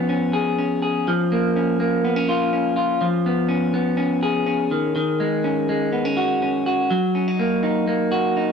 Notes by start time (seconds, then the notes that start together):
Already playing: F3 B3
0.09 C#4
0.33 G#4
0.59 C#4
0.82 G#4
1.08 F3
1.32 A#3
1.56 C#4
1.80 A#3
2.05 B3
2.16 C#4
2.29 F4
2.53 C#4
2.76 F4
3.01 F3
3.26 B3
3.49 C#4
3.74 B3
3.97 C#4
4.23 G#4
4.46 C#4
4.71 D#3
4.96 D#3
5.20 G#3
5.44 C#4
5.69 G#3
5.93 B3
6.05 C#4
6.17 F#4
6.42 C#4
6.66 F#4
6.90 F#3
7.15 C#4
7.28 D#4
7.39 A#3
7.63 D#4
7.87 A#3
8.12 F#4
8.37 D#4